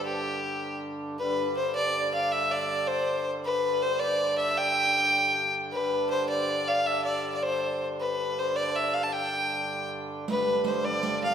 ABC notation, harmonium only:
X:1
M:6/8
L:1/8
Q:3/8=106
K:Gmix
V:1 name="Harmonium" clef=bass
[G,,D,]6 | [G,,D,]6- | [G,,D,]6- | [G,,D,]6- |
[G,,D,]6 | [G,,D,]6- | [G,,D,]6- | [G,,D,]6- |
[G,,D,]6 | [G,,D,]6 |]